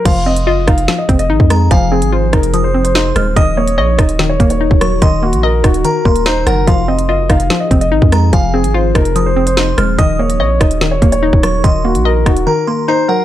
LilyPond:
<<
  \new Staff \with { instrumentName = "Synth bell" } { \time 4/4 \key f \phrygian \tempo 4 = 145 c'''4 r2 r8 bes''8 | aes''4 r4 ees'''4 c'''8 f'''8 | ees'''4 r2 r8 des'''8 | c'''4 r4 bes''8 c'''8 bes''8 ges''8 |
c'''4 r2 r8 bes''8 | aes''4 r4 ees'''4 c'''8 f'''8 | ees'''4 r2 r8 des'''8 | c'''4 r4 bes''8 c'''8 bes''8 ges''8 | }
  \new Staff \with { instrumentName = "Grand piano" } { \time 4/4 \key f \phrygian f''8 ees''8 ees''8 f''8. ees''8 ees''4~ ees''16 | f''8 aes'8 c''8 bes'8. c''8 c''4~ c''16 | ees''8 des''8 des''8 ees''8. des''8 des''4~ des''16 | ees''8 ges'8 bes'8 ges'8 bes'8 bes'8 c''8 bes'8 |
f''8 ees''8 ees''8 f''8. ees''8 ees''4~ ees''16 | f''8 aes'8 c''8 bes'8. c''8 c''4~ c''16 | ees''8 des''8 des''8 ees''8. des''8 des''4~ des''16 | ees''8 ges'8 bes'8 ges'8 bes'8 bes'8 c''8 bes'8 | }
  \new Staff \with { instrumentName = "Ambient pad" } { \time 4/4 \key f \phrygian <f c' ees' aes'>1~ | <f c' ees' aes'>1 | <ees ges' bes'>1~ | <ees ges' bes'>1 |
<f c' aes'>1~ | <f c' aes'>1 | <ees ees' ges' bes'>1~ | <ees ees' ges' bes'>1 | }
  \new Staff \with { instrumentName = "Synth pluck" } { \time 4/4 \key f \phrygian f8 c'8 f'8 ees'8 f8 c'8 ees'8 aes8 | f8 c'8 f'8 ees'8 f8 c'8 ees'8 aes8 | ees8 bes8 ees''8 ees'8 ees8 bes8 ees'8 ges8 | ees8 bes8 ees''8 ees'8 ees8 bes8 ees'8 ges8 |
f8 c'8 f'8 ees'8 f8 c'8 ees'8 aes8 | f8 c'8 f'8 ees'8 f8 c'8 ees'8 aes8 | ees8 bes8 ees''8 ees'8 ees8 bes8 ees'8 ges8 | ees8 bes8 ees''8 ees'8 ees8 bes8 ees'8 ges8 | }
  \new Staff \with { instrumentName = "808-style bass" } { \clef bass \time 4/4 \key f \phrygian f,,4 ges,,16 f,,16 f,,8 r8 f,,8 aes,,16 f,8. | f,,8. aes,,8. f,,2 ees,,8 | ees,,4 bes,,8 ees,,4 ees,,8. ees,,8. | ees,,8. bes,,8. ees,,8 r8 ees,,4 ges,,8 |
f,,4 ges,,16 f,,16 f,,8 r8 f,,8 aes,,16 f,8. | f,,8. aes,,8. f,,2 ees,,8 | ees,,4 bes,,8 ees,,4 ees,,8. ees,,8. | ees,,8. bes,,8. ees,,8 r2 | }
  \new DrumStaff \with { instrumentName = "Drums" } \drummode { \time 4/4 <cymc hh bd>8. hh16 r8 <hh bd ss>16 hh16 sn8 <hh bd>16 hh16 r16 bd16 <hh ss>8 | <hh bd>8. hh16 r8 <hh bd ss>16 hh16 hh8. hh16 sn8 <hh ss>8 | <hh bd>8. hh16 r8 <hh bd ss>16 hh16 sn8 <hh bd>16 hh16 r16 bd16 <hh ss>8 | <hh bd>8. hh16 r8 <hh bd ss>16 hh16 hh8 bd16 hh16 sn8 <hh ss>8 |
<hh bd>8. hh16 r8 <hh bd ss>16 hh16 sn8 <hh bd>16 hh16 r16 bd16 <hh ss>8 | <hh bd>8. hh16 r8 <hh bd ss>16 hh16 hh8. hh16 sn8 <hh ss>8 | <hh bd>8. hh16 r8 <hh bd ss>16 hh16 sn8 <hh bd>16 hh16 r16 bd16 <hh ss>8 | <hh bd>8. hh16 r8 <hh bd ss>16 hh16 r4 r4 | }
>>